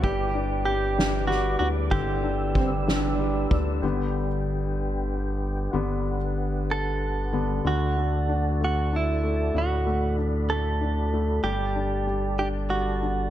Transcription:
0.02 1.57 G1 loud
0.02 0.63 G3 medium
0.02 0.63 G4 loud
0.02 3.79 B4 medium
0.02 3.78 D5 medium
0.02 1.89 D6 medium
0.02 kick loud
0.02 ride medium
0.34 0.96 D4 medium
0.34 ride soft
0.65 1.26 G3 medium
0.65 1.27 G4 loud
0.65 ride soft
0.98 1.58 D4 medium
0.98 snare loud
0.98 ride medium
1.27 2.51 G3 medium
1.27 1.58 F#4 medium
1.27 snare soft
1.27 ride soft
1.59 1.90 D2 medium
1.59 2.22 D4 medium
1.59 1.68 F#4 medium
1.59 ride medium
1.91 3.47 G1 loud
1.91 3.79 D3 medium
1.91 3.47 G4 loud
1.91 3.81 E6 medium
1.91 kick loud
1.91 ride medium
2.23 2.86 D4 soft
2.23 ride soft
2.55 3.17 G3 soft
2.55 2.70 C4 medium
2.55 kick medium
2.86 3.79 D4 medium
2.86 3.50 D4 medium
2.86 snare loud
2.86 ride medium
3.18 3.81 G3 medium
3.18 ride soft
3.50 3.81 D2 medium
3.50 3.82 D4 soft
3.50 kick medium
3.50 ride medium
3.82 5.69 G1 medium
3.82 4.25 D3 soft
3.82 4.26 G3 soft
3.82 4.26 B3 soft
3.82 7.60 D4 medium
3.82 7.60 G4 soft
3.82 7.60 B4 soft
3.82 5.71 G5 medium
5.71 7.61 G1 loud
5.71 6.15 D3 soft
5.71 6.16 G3 soft
5.71 6.16 B3 medium
5.71 7.62 F#5 medium
6.71 7.67 A4 medium
7.32 7.61 D3 soft
7.32 7.62 G3 soft
7.32 7.62 B3 soft
7.65 9.51 D2 loud
7.65 9.51 D3 medium
7.65 11.41 F#4 medium
7.65 8.63 F#4 medium
7.65 13.30 A4 soft
7.65 13.30 D5 soft
7.65 9.54 A5 medium
7.97 8.59 A3 soft
8.29 8.91 D4 soft
8.61 9.22 A3 soft
8.61 8.95 F#4 medium
8.92 10.14 D4 soft
8.92 9.59 E4 medium
9.24 9.85 A3 soft
9.55 11.40 D2 medium
9.55 11.40 A2 medium
9.55 10.16 F#4 medium
9.55 11.43 B5 medium
9.86 10.48 A3 soft
10.18 10.80 D4 soft
10.50 11.12 A3 soft
10.50 11.43 A4 medium
10.81 11.42 D4 medium
11.13 11.44 A3 soft
11.43 13.30 G1 medium
11.43 13.30 G3 medium
11.43 12.06 G3 medium
11.43 12.38 G4 medium
11.43 13.30 A5 medium
11.75 12.37 D4 soft
12.07 12.69 G3 soft
12.39 13.01 D4 soft
12.39 12.48 G4 medium
12.70 13.30 G3 soft
12.70 13.30 F#4 medium
13.02 13.30 D4 soft

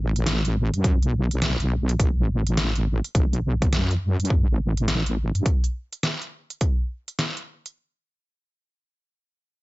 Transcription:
0.00 0.71 A1 loud
0.16 closed hi-hat medium
0.26 snare loud
0.26 closed hi-hat medium
0.45 closed hi-hat soft
0.74 0.99 F#2 loud
0.74 closed hi-hat soft
0.84 kick loud
0.84 closed hi-hat medium
1.02 1.57 B1 loud
1.02 closed hi-hat soft
1.31 closed hi-hat soft
1.42 snare loud
1.42 closed hi-hat medium
1.60 1.98 B1 loud
1.60 closed hi-hat soft
1.89 closed hi-hat medium
1.99 2.15 B1 medium
1.99 kick loud
1.99 closed hi-hat medium
2.17 3.01 A1 loud
2.47 closed hi-hat medium
2.57 snare loud
2.57 closed hi-hat medium
2.76 closed hi-hat soft
3.04 closed hi-hat medium
3.15 3.71 B1 loud
3.15 kick loud
3.15 closed hi-hat medium
3.33 closed hi-hat soft
3.62 kick loud
3.62 closed hi-hat soft
3.73 4.17 F#2 medium
3.73 snare loud
3.73 closed hi-hat medium
3.91 closed hi-hat soft
4.19 4.45 F#2 loud
4.19 closed hi-hat medium
4.25 closed hi-hat medium
4.30 kick loud
4.48 5.32 A1 medium
4.77 closed hi-hat soft
4.88 snare loud
4.88 closed hi-hat medium
5.06 closed hi-hat soft
5.35 5.44 F#2 medium
5.35 closed hi-hat soft
5.46 kick loud
5.46 closed hi-hat medium
5.64 closed hi-hat soft
5.93 closed hi-hat soft
6.03 snare loud
6.03 closed hi-hat medium
6.22 closed hi-hat soft
6.50 closed hi-hat soft
6.61 kick loud
6.61 closed hi-hat medium
7.08 closed hi-hat soft
7.19 snare loud
7.19 closed hi-hat medium
7.37 closed hi-hat soft
7.66 closed hi-hat soft

